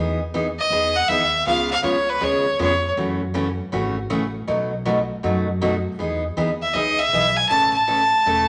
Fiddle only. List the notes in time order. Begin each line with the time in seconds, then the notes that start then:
0.59 D#5
0.96 F#5
1.08 E5
1.47 F5
1.71 F5
1.84 C#5
2.09 B4
2.24 C#5
2.62 C#5
6.62 E5
6.74 D#5
6.99 E5
7.37 G#5
7.49 A5
7.73 A5